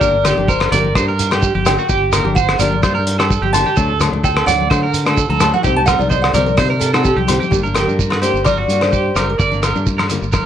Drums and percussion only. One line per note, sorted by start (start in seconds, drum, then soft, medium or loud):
0.01 kick medium
0.01 shekere medium
0.25 cross-stick medium
0.25 closed hi-hat soft
0.25 low conga medium
0.25 low agogo medium
0.25 shekere loud
0.38 high conga medium
0.48 kick medium
0.48 shekere medium
0.60 cross-stick medium
0.60 low agogo medium
0.72 closed hi-hat soft
0.72 high conga medium
0.72 low conga medium
0.72 shekere medium
0.85 high conga medium
0.95 kick medium
0.95 cross-stick medium
0.95 low agogo medium
0.95 shekere medium
1.19 closed hi-hat soft
1.19 shekere medium
1.31 cross-stick medium
1.31 low agogo medium
1.31 shekere soft
1.42 kick medium
1.42 shekere medium
1.55 high conga medium
1.66 cross-stick medium
1.66 closed hi-hat soft
1.66 low conga medium
1.66 low agogo medium
1.66 shekere medium
1.78 shekere soft
1.89 kick medium
1.89 shekere medium
2.13 cross-stick medium
2.13 closed hi-hat soft
2.13 low conga medium
2.13 low agogo medium
2.13 shekere medium
2.25 high conga medium
2.36 kick medium
2.36 shekere medium
2.49 cross-stick medium
2.49 low agogo medium
2.60 closed hi-hat soft
2.60 high conga medium
2.60 low conga medium
2.60 shekere loud
2.73 high conga medium
2.83 kick medium
2.83 cross-stick medium
2.83 low agogo medium
2.83 shekere medium
3.07 closed hi-hat medium
3.20 cross-stick medium
3.20 low agogo medium
3.20 shekere soft
3.31 kick medium
3.31 shekere medium
3.43 high conga medium
3.53 closed hi-hat medium
3.53 low conga medium
3.53 low agogo medium
3.53 shekere medium
3.66 high conga medium
3.66 shekere soft
3.77 kick medium
3.77 shekere medium
4.00 cross-stick medium
4.00 closed hi-hat medium
4.00 low conga medium
4.00 low agogo medium
4.00 shekere loud
4.13 high conga medium
4.24 kick medium
4.24 shekere medium
4.37 cross-stick medium
4.37 low agogo medium
4.48 closed hi-hat soft
4.48 high conga medium
4.48 low conga medium
4.48 shekere medium
4.60 high conga medium
4.71 kick medium
4.71 cross-stick medium
4.71 low agogo medium
4.71 shekere medium
4.94 closed hi-hat soft
4.94 shekere medium
5.06 cross-stick medium
5.06 low agogo medium
5.06 shekere soft
5.17 kick medium
5.17 shekere medium
5.30 high conga medium
5.40 cross-stick medium
5.40 closed hi-hat soft
5.40 low conga medium
5.40 low agogo medium
5.40 shekere medium
5.54 high conga medium
5.54 shekere soft
5.64 kick medium
5.64 shekere medium
5.87 kick medium
5.87 cross-stick medium
5.87 closed hi-hat soft
5.87 low conga medium
5.87 low agogo medium
5.87 shekere medium
6.00 high conga medium
6.00 shekere soft
6.11 kick medium
6.11 shekere medium
6.24 cross-stick medium
6.24 low agogo medium
6.34 closed hi-hat soft
6.34 high conga medium
6.34 low conga medium
6.34 shekere medium
6.47 high conga medium
6.47 shekere soft
6.58 kick medium
6.58 cross-stick medium
6.58 low conga medium
6.58 low agogo medium
6.58 shekere medium
6.81 closed hi-hat medium
6.81 shekere medium
6.94 cross-stick medium
6.94 low agogo medium
6.94 shekere soft
7.04 kick medium
7.04 shekere medium
7.18 high conga medium
7.28 closed hi-hat medium
7.28 low conga medium
7.28 low agogo medium
7.28 shekere medium
7.42 high conga medium
7.42 shekere soft
7.52 kick medium
7.52 shekere medium
7.65 high conga soft
7.65 shekere soft
7.74 cross-stick medium
7.74 closed hi-hat soft
7.74 high conga medium
7.74 low conga soft
7.74 low agogo medium
7.74 shekere medium
7.89 high conga medium
7.89 shekere soft
7.99 kick medium
7.99 shekere medium
8.10 cross-stick medium
8.10 low agogo medium
8.23 closed hi-hat soft
8.23 shekere medium
8.36 shekere soft
8.45 kick medium
8.45 cross-stick medium
8.45 high conga medium
8.45 low agogo medium
8.45 shekere medium
8.69 closed hi-hat soft
8.69 shekere medium
8.81 cross-stick medium
8.81 low agogo medium
8.81 shekere soft
8.93 kick medium
8.93 shekere medium
9.16 cross-stick medium
9.16 closed hi-hat soft
9.16 low conga medium
9.16 low agogo medium
9.16 shekere medium
9.40 kick medium
9.40 shekere medium
9.52 high conga medium
9.52 shekere soft
9.63 cross-stick medium
9.63 closed hi-hat soft
9.63 high conga medium
9.63 low conga medium
9.63 low agogo medium
9.63 shekere medium
9.76 high conga medium
9.76 shekere soft
9.86 kick medium
9.86 shekere medium
9.99 cross-stick medium
9.99 high conga medium
9.99 low agogo medium
10.10 closed hi-hat soft
10.10 low conga medium
10.10 shekere medium
10.22 shekere soft
10.33 kick medium
10.33 cross-stick medium
10.33 high conga medium
10.33 low agogo medium
10.33 shekere medium